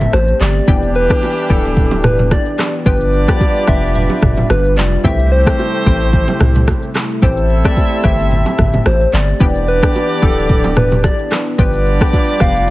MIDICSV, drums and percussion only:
0, 0, Header, 1, 2, 480
1, 0, Start_track
1, 0, Key_signature, 0, "minor"
1, 0, Tempo, 545455
1, 597, Time_signature, 4, 2, 24, 8
1, 11179, End_track
2, 0, Start_track
2, 0, Title_t, "Drums"
2, 1, Note_on_c, 9, 82, 54
2, 10, Note_on_c, 9, 61, 75
2, 14, Note_on_c, 9, 45, 95
2, 89, Note_off_c, 9, 82, 0
2, 98, Note_off_c, 9, 61, 0
2, 102, Note_off_c, 9, 45, 0
2, 115, Note_on_c, 9, 82, 75
2, 117, Note_on_c, 9, 37, 99
2, 125, Note_on_c, 9, 60, 88
2, 203, Note_off_c, 9, 82, 0
2, 205, Note_off_c, 9, 37, 0
2, 213, Note_off_c, 9, 60, 0
2, 246, Note_on_c, 9, 82, 49
2, 334, Note_off_c, 9, 82, 0
2, 358, Note_on_c, 9, 82, 60
2, 359, Note_on_c, 9, 61, 57
2, 360, Note_on_c, 9, 39, 84
2, 446, Note_off_c, 9, 82, 0
2, 447, Note_off_c, 9, 61, 0
2, 448, Note_off_c, 9, 39, 0
2, 490, Note_on_c, 9, 82, 45
2, 578, Note_off_c, 9, 82, 0
2, 593, Note_on_c, 9, 64, 74
2, 595, Note_on_c, 9, 82, 71
2, 596, Note_on_c, 9, 36, 110
2, 681, Note_off_c, 9, 64, 0
2, 683, Note_off_c, 9, 82, 0
2, 684, Note_off_c, 9, 36, 0
2, 725, Note_on_c, 9, 82, 59
2, 813, Note_off_c, 9, 82, 0
2, 836, Note_on_c, 9, 82, 52
2, 924, Note_off_c, 9, 82, 0
2, 967, Note_on_c, 9, 36, 85
2, 968, Note_on_c, 9, 82, 53
2, 973, Note_on_c, 9, 37, 105
2, 1055, Note_off_c, 9, 36, 0
2, 1056, Note_off_c, 9, 82, 0
2, 1061, Note_off_c, 9, 37, 0
2, 1082, Note_on_c, 9, 60, 84
2, 1082, Note_on_c, 9, 82, 77
2, 1170, Note_off_c, 9, 60, 0
2, 1170, Note_off_c, 9, 82, 0
2, 1212, Note_on_c, 9, 82, 61
2, 1300, Note_off_c, 9, 82, 0
2, 1309, Note_on_c, 9, 82, 47
2, 1319, Note_on_c, 9, 36, 89
2, 1397, Note_off_c, 9, 82, 0
2, 1407, Note_off_c, 9, 36, 0
2, 1449, Note_on_c, 9, 82, 63
2, 1537, Note_off_c, 9, 82, 0
2, 1551, Note_on_c, 9, 82, 75
2, 1556, Note_on_c, 9, 36, 91
2, 1557, Note_on_c, 9, 64, 86
2, 1639, Note_off_c, 9, 82, 0
2, 1644, Note_off_c, 9, 36, 0
2, 1645, Note_off_c, 9, 64, 0
2, 1681, Note_on_c, 9, 82, 56
2, 1684, Note_on_c, 9, 61, 92
2, 1769, Note_off_c, 9, 82, 0
2, 1772, Note_off_c, 9, 61, 0
2, 1787, Note_on_c, 9, 82, 58
2, 1795, Note_on_c, 9, 37, 100
2, 1796, Note_on_c, 9, 45, 102
2, 1802, Note_on_c, 9, 60, 53
2, 1802, Note_on_c, 9, 64, 81
2, 1875, Note_off_c, 9, 82, 0
2, 1883, Note_off_c, 9, 37, 0
2, 1884, Note_off_c, 9, 45, 0
2, 1890, Note_off_c, 9, 60, 0
2, 1890, Note_off_c, 9, 64, 0
2, 1919, Note_on_c, 9, 82, 55
2, 1929, Note_on_c, 9, 61, 72
2, 1933, Note_on_c, 9, 45, 95
2, 2007, Note_off_c, 9, 82, 0
2, 2017, Note_off_c, 9, 61, 0
2, 2021, Note_off_c, 9, 45, 0
2, 2034, Note_on_c, 9, 82, 79
2, 2035, Note_on_c, 9, 36, 89
2, 2036, Note_on_c, 9, 37, 97
2, 2043, Note_on_c, 9, 60, 87
2, 2122, Note_off_c, 9, 82, 0
2, 2123, Note_off_c, 9, 36, 0
2, 2124, Note_off_c, 9, 37, 0
2, 2131, Note_off_c, 9, 60, 0
2, 2165, Note_on_c, 9, 82, 50
2, 2253, Note_off_c, 9, 82, 0
2, 2278, Note_on_c, 9, 61, 57
2, 2278, Note_on_c, 9, 82, 58
2, 2280, Note_on_c, 9, 37, 87
2, 2280, Note_on_c, 9, 39, 83
2, 2366, Note_off_c, 9, 61, 0
2, 2366, Note_off_c, 9, 82, 0
2, 2368, Note_off_c, 9, 37, 0
2, 2368, Note_off_c, 9, 39, 0
2, 2409, Note_on_c, 9, 82, 44
2, 2497, Note_off_c, 9, 82, 0
2, 2512, Note_on_c, 9, 64, 76
2, 2516, Note_on_c, 9, 82, 73
2, 2517, Note_on_c, 9, 36, 110
2, 2600, Note_off_c, 9, 64, 0
2, 2604, Note_off_c, 9, 82, 0
2, 2605, Note_off_c, 9, 36, 0
2, 2645, Note_on_c, 9, 82, 57
2, 2733, Note_off_c, 9, 82, 0
2, 2756, Note_on_c, 9, 82, 49
2, 2844, Note_off_c, 9, 82, 0
2, 2888, Note_on_c, 9, 36, 86
2, 2888, Note_on_c, 9, 82, 53
2, 2893, Note_on_c, 9, 37, 102
2, 2976, Note_off_c, 9, 36, 0
2, 2976, Note_off_c, 9, 82, 0
2, 2981, Note_off_c, 9, 37, 0
2, 2996, Note_on_c, 9, 36, 90
2, 3002, Note_on_c, 9, 82, 76
2, 3003, Note_on_c, 9, 60, 80
2, 3084, Note_off_c, 9, 36, 0
2, 3090, Note_off_c, 9, 82, 0
2, 3091, Note_off_c, 9, 60, 0
2, 3134, Note_on_c, 9, 82, 62
2, 3222, Note_off_c, 9, 82, 0
2, 3230, Note_on_c, 9, 82, 49
2, 3233, Note_on_c, 9, 37, 90
2, 3240, Note_on_c, 9, 36, 89
2, 3318, Note_off_c, 9, 82, 0
2, 3321, Note_off_c, 9, 37, 0
2, 3328, Note_off_c, 9, 36, 0
2, 3373, Note_on_c, 9, 82, 62
2, 3461, Note_off_c, 9, 82, 0
2, 3473, Note_on_c, 9, 82, 74
2, 3477, Note_on_c, 9, 64, 86
2, 3561, Note_off_c, 9, 82, 0
2, 3565, Note_off_c, 9, 64, 0
2, 3602, Note_on_c, 9, 82, 57
2, 3605, Note_on_c, 9, 61, 93
2, 3690, Note_off_c, 9, 82, 0
2, 3693, Note_off_c, 9, 61, 0
2, 3709, Note_on_c, 9, 82, 57
2, 3717, Note_on_c, 9, 36, 97
2, 3718, Note_on_c, 9, 37, 97
2, 3719, Note_on_c, 9, 45, 97
2, 3723, Note_on_c, 9, 60, 55
2, 3723, Note_on_c, 9, 64, 74
2, 3797, Note_off_c, 9, 82, 0
2, 3805, Note_off_c, 9, 36, 0
2, 3806, Note_off_c, 9, 37, 0
2, 3807, Note_off_c, 9, 45, 0
2, 3811, Note_off_c, 9, 60, 0
2, 3811, Note_off_c, 9, 64, 0
2, 3842, Note_on_c, 9, 82, 56
2, 3849, Note_on_c, 9, 61, 73
2, 3855, Note_on_c, 9, 45, 92
2, 3930, Note_off_c, 9, 82, 0
2, 3937, Note_off_c, 9, 61, 0
2, 3943, Note_off_c, 9, 45, 0
2, 3958, Note_on_c, 9, 82, 80
2, 3959, Note_on_c, 9, 37, 102
2, 3963, Note_on_c, 9, 60, 91
2, 4046, Note_off_c, 9, 82, 0
2, 4047, Note_off_c, 9, 37, 0
2, 4051, Note_off_c, 9, 60, 0
2, 4088, Note_on_c, 9, 82, 48
2, 4176, Note_off_c, 9, 82, 0
2, 4197, Note_on_c, 9, 61, 57
2, 4202, Note_on_c, 9, 82, 57
2, 4203, Note_on_c, 9, 39, 84
2, 4285, Note_off_c, 9, 61, 0
2, 4290, Note_off_c, 9, 82, 0
2, 4291, Note_off_c, 9, 39, 0
2, 4333, Note_on_c, 9, 82, 42
2, 4421, Note_off_c, 9, 82, 0
2, 4431, Note_on_c, 9, 64, 79
2, 4438, Note_on_c, 9, 36, 109
2, 4439, Note_on_c, 9, 82, 71
2, 4519, Note_off_c, 9, 64, 0
2, 4526, Note_off_c, 9, 36, 0
2, 4527, Note_off_c, 9, 82, 0
2, 4570, Note_on_c, 9, 82, 58
2, 4658, Note_off_c, 9, 82, 0
2, 4809, Note_on_c, 9, 36, 84
2, 4810, Note_on_c, 9, 82, 56
2, 4815, Note_on_c, 9, 37, 108
2, 4897, Note_off_c, 9, 36, 0
2, 4898, Note_off_c, 9, 82, 0
2, 4903, Note_off_c, 9, 37, 0
2, 4922, Note_on_c, 9, 60, 80
2, 4924, Note_on_c, 9, 82, 80
2, 5010, Note_off_c, 9, 60, 0
2, 5012, Note_off_c, 9, 82, 0
2, 5054, Note_on_c, 9, 82, 61
2, 5142, Note_off_c, 9, 82, 0
2, 5150, Note_on_c, 9, 82, 50
2, 5160, Note_on_c, 9, 36, 89
2, 5238, Note_off_c, 9, 82, 0
2, 5248, Note_off_c, 9, 36, 0
2, 5290, Note_on_c, 9, 82, 65
2, 5378, Note_off_c, 9, 82, 0
2, 5392, Note_on_c, 9, 82, 72
2, 5397, Note_on_c, 9, 36, 91
2, 5398, Note_on_c, 9, 64, 87
2, 5480, Note_off_c, 9, 82, 0
2, 5485, Note_off_c, 9, 36, 0
2, 5486, Note_off_c, 9, 64, 0
2, 5520, Note_on_c, 9, 82, 58
2, 5526, Note_on_c, 9, 61, 93
2, 5608, Note_off_c, 9, 82, 0
2, 5614, Note_off_c, 9, 61, 0
2, 5628, Note_on_c, 9, 82, 55
2, 5636, Note_on_c, 9, 37, 104
2, 5637, Note_on_c, 9, 45, 100
2, 5644, Note_on_c, 9, 60, 57
2, 5644, Note_on_c, 9, 64, 79
2, 5716, Note_off_c, 9, 82, 0
2, 5724, Note_off_c, 9, 37, 0
2, 5725, Note_off_c, 9, 45, 0
2, 5732, Note_off_c, 9, 60, 0
2, 5732, Note_off_c, 9, 64, 0
2, 5760, Note_on_c, 9, 82, 55
2, 5770, Note_on_c, 9, 61, 75
2, 5774, Note_on_c, 9, 45, 94
2, 5848, Note_off_c, 9, 82, 0
2, 5858, Note_off_c, 9, 61, 0
2, 5862, Note_off_c, 9, 45, 0
2, 5874, Note_on_c, 9, 82, 76
2, 5875, Note_on_c, 9, 36, 92
2, 5876, Note_on_c, 9, 37, 99
2, 5885, Note_on_c, 9, 60, 92
2, 5962, Note_off_c, 9, 82, 0
2, 5963, Note_off_c, 9, 36, 0
2, 5964, Note_off_c, 9, 37, 0
2, 5973, Note_off_c, 9, 60, 0
2, 6004, Note_on_c, 9, 82, 49
2, 6092, Note_off_c, 9, 82, 0
2, 6118, Note_on_c, 9, 61, 57
2, 6119, Note_on_c, 9, 82, 58
2, 6120, Note_on_c, 9, 37, 85
2, 6120, Note_on_c, 9, 39, 85
2, 6206, Note_off_c, 9, 61, 0
2, 6207, Note_off_c, 9, 82, 0
2, 6208, Note_off_c, 9, 37, 0
2, 6208, Note_off_c, 9, 39, 0
2, 6249, Note_on_c, 9, 82, 44
2, 6337, Note_off_c, 9, 82, 0
2, 6351, Note_on_c, 9, 64, 81
2, 6356, Note_on_c, 9, 82, 75
2, 6357, Note_on_c, 9, 36, 109
2, 6439, Note_off_c, 9, 64, 0
2, 6444, Note_off_c, 9, 82, 0
2, 6445, Note_off_c, 9, 36, 0
2, 6485, Note_on_c, 9, 82, 55
2, 6573, Note_off_c, 9, 82, 0
2, 6596, Note_on_c, 9, 82, 50
2, 6684, Note_off_c, 9, 82, 0
2, 6728, Note_on_c, 9, 36, 88
2, 6728, Note_on_c, 9, 82, 53
2, 6734, Note_on_c, 9, 37, 105
2, 6816, Note_off_c, 9, 36, 0
2, 6816, Note_off_c, 9, 82, 0
2, 6822, Note_off_c, 9, 37, 0
2, 6836, Note_on_c, 9, 36, 87
2, 6841, Note_on_c, 9, 60, 78
2, 6843, Note_on_c, 9, 82, 73
2, 6924, Note_off_c, 9, 36, 0
2, 6929, Note_off_c, 9, 60, 0
2, 6931, Note_off_c, 9, 82, 0
2, 6972, Note_on_c, 9, 82, 62
2, 7060, Note_off_c, 9, 82, 0
2, 7069, Note_on_c, 9, 82, 49
2, 7073, Note_on_c, 9, 37, 88
2, 7080, Note_on_c, 9, 36, 93
2, 7157, Note_off_c, 9, 82, 0
2, 7161, Note_off_c, 9, 37, 0
2, 7168, Note_off_c, 9, 36, 0
2, 7211, Note_on_c, 9, 82, 66
2, 7299, Note_off_c, 9, 82, 0
2, 7312, Note_on_c, 9, 82, 75
2, 7317, Note_on_c, 9, 64, 86
2, 7400, Note_off_c, 9, 82, 0
2, 7405, Note_off_c, 9, 64, 0
2, 7441, Note_on_c, 9, 82, 59
2, 7444, Note_on_c, 9, 61, 90
2, 7529, Note_off_c, 9, 82, 0
2, 7532, Note_off_c, 9, 61, 0
2, 7547, Note_on_c, 9, 82, 57
2, 7556, Note_on_c, 9, 36, 94
2, 7556, Note_on_c, 9, 37, 99
2, 7557, Note_on_c, 9, 45, 101
2, 7564, Note_on_c, 9, 60, 55
2, 7564, Note_on_c, 9, 64, 75
2, 7635, Note_off_c, 9, 82, 0
2, 7644, Note_off_c, 9, 36, 0
2, 7644, Note_off_c, 9, 37, 0
2, 7645, Note_off_c, 9, 45, 0
2, 7652, Note_off_c, 9, 60, 0
2, 7652, Note_off_c, 9, 64, 0
2, 7680, Note_on_c, 9, 82, 57
2, 7689, Note_on_c, 9, 61, 73
2, 7693, Note_on_c, 9, 45, 98
2, 7768, Note_off_c, 9, 82, 0
2, 7777, Note_off_c, 9, 61, 0
2, 7781, Note_off_c, 9, 45, 0
2, 7794, Note_on_c, 9, 82, 76
2, 7795, Note_on_c, 9, 37, 105
2, 7804, Note_on_c, 9, 60, 90
2, 7882, Note_off_c, 9, 82, 0
2, 7883, Note_off_c, 9, 37, 0
2, 7892, Note_off_c, 9, 60, 0
2, 7925, Note_on_c, 9, 82, 48
2, 8013, Note_off_c, 9, 82, 0
2, 8038, Note_on_c, 9, 61, 55
2, 8038, Note_on_c, 9, 82, 59
2, 8039, Note_on_c, 9, 39, 84
2, 8126, Note_off_c, 9, 61, 0
2, 8126, Note_off_c, 9, 82, 0
2, 8127, Note_off_c, 9, 39, 0
2, 8169, Note_on_c, 9, 82, 42
2, 8257, Note_off_c, 9, 82, 0
2, 8271, Note_on_c, 9, 64, 79
2, 8275, Note_on_c, 9, 82, 72
2, 8276, Note_on_c, 9, 36, 112
2, 8359, Note_off_c, 9, 64, 0
2, 8363, Note_off_c, 9, 82, 0
2, 8364, Note_off_c, 9, 36, 0
2, 8406, Note_on_c, 9, 82, 55
2, 8494, Note_off_c, 9, 82, 0
2, 8517, Note_on_c, 9, 82, 50
2, 8605, Note_off_c, 9, 82, 0
2, 8648, Note_on_c, 9, 36, 84
2, 8648, Note_on_c, 9, 82, 54
2, 8653, Note_on_c, 9, 37, 105
2, 8736, Note_off_c, 9, 36, 0
2, 8736, Note_off_c, 9, 82, 0
2, 8741, Note_off_c, 9, 37, 0
2, 8761, Note_on_c, 9, 82, 77
2, 8762, Note_on_c, 9, 60, 82
2, 8849, Note_off_c, 9, 82, 0
2, 8850, Note_off_c, 9, 60, 0
2, 8892, Note_on_c, 9, 82, 63
2, 8980, Note_off_c, 9, 82, 0
2, 8988, Note_on_c, 9, 82, 51
2, 8999, Note_on_c, 9, 36, 90
2, 9076, Note_off_c, 9, 82, 0
2, 9087, Note_off_c, 9, 36, 0
2, 9130, Note_on_c, 9, 82, 63
2, 9218, Note_off_c, 9, 82, 0
2, 9231, Note_on_c, 9, 82, 75
2, 9236, Note_on_c, 9, 36, 91
2, 9237, Note_on_c, 9, 64, 86
2, 9319, Note_off_c, 9, 82, 0
2, 9324, Note_off_c, 9, 36, 0
2, 9325, Note_off_c, 9, 64, 0
2, 9360, Note_on_c, 9, 82, 57
2, 9364, Note_on_c, 9, 61, 94
2, 9448, Note_off_c, 9, 82, 0
2, 9452, Note_off_c, 9, 61, 0
2, 9467, Note_on_c, 9, 82, 58
2, 9475, Note_on_c, 9, 37, 102
2, 9476, Note_on_c, 9, 45, 102
2, 9482, Note_on_c, 9, 60, 56
2, 9482, Note_on_c, 9, 64, 80
2, 9555, Note_off_c, 9, 82, 0
2, 9563, Note_off_c, 9, 37, 0
2, 9564, Note_off_c, 9, 45, 0
2, 9570, Note_off_c, 9, 60, 0
2, 9570, Note_off_c, 9, 64, 0
2, 9599, Note_on_c, 9, 82, 55
2, 9609, Note_on_c, 9, 61, 78
2, 9612, Note_on_c, 9, 45, 94
2, 9687, Note_off_c, 9, 82, 0
2, 9697, Note_off_c, 9, 61, 0
2, 9700, Note_off_c, 9, 45, 0
2, 9712, Note_on_c, 9, 82, 78
2, 9714, Note_on_c, 9, 36, 89
2, 9714, Note_on_c, 9, 37, 102
2, 9723, Note_on_c, 9, 60, 85
2, 9800, Note_off_c, 9, 82, 0
2, 9802, Note_off_c, 9, 36, 0
2, 9802, Note_off_c, 9, 37, 0
2, 9811, Note_off_c, 9, 60, 0
2, 9845, Note_on_c, 9, 82, 49
2, 9933, Note_off_c, 9, 82, 0
2, 9958, Note_on_c, 9, 61, 54
2, 9958, Note_on_c, 9, 82, 57
2, 9959, Note_on_c, 9, 37, 84
2, 9959, Note_on_c, 9, 39, 84
2, 10046, Note_off_c, 9, 61, 0
2, 10046, Note_off_c, 9, 82, 0
2, 10047, Note_off_c, 9, 37, 0
2, 10047, Note_off_c, 9, 39, 0
2, 10090, Note_on_c, 9, 82, 44
2, 10178, Note_off_c, 9, 82, 0
2, 10194, Note_on_c, 9, 64, 74
2, 10196, Note_on_c, 9, 82, 75
2, 10197, Note_on_c, 9, 36, 113
2, 10282, Note_off_c, 9, 64, 0
2, 10284, Note_off_c, 9, 82, 0
2, 10285, Note_off_c, 9, 36, 0
2, 10326, Note_on_c, 9, 82, 58
2, 10414, Note_off_c, 9, 82, 0
2, 10437, Note_on_c, 9, 82, 50
2, 10525, Note_off_c, 9, 82, 0
2, 10568, Note_on_c, 9, 36, 90
2, 10568, Note_on_c, 9, 82, 53
2, 10574, Note_on_c, 9, 37, 108
2, 10656, Note_off_c, 9, 36, 0
2, 10656, Note_off_c, 9, 82, 0
2, 10662, Note_off_c, 9, 37, 0
2, 10676, Note_on_c, 9, 36, 88
2, 10682, Note_on_c, 9, 60, 81
2, 10683, Note_on_c, 9, 82, 76
2, 10764, Note_off_c, 9, 36, 0
2, 10770, Note_off_c, 9, 60, 0
2, 10771, Note_off_c, 9, 82, 0
2, 10813, Note_on_c, 9, 82, 61
2, 10901, Note_off_c, 9, 82, 0
2, 10910, Note_on_c, 9, 82, 51
2, 10913, Note_on_c, 9, 37, 90
2, 10920, Note_on_c, 9, 36, 90
2, 10998, Note_off_c, 9, 82, 0
2, 11001, Note_off_c, 9, 37, 0
2, 11008, Note_off_c, 9, 36, 0
2, 11053, Note_on_c, 9, 82, 65
2, 11141, Note_off_c, 9, 82, 0
2, 11179, End_track
0, 0, End_of_file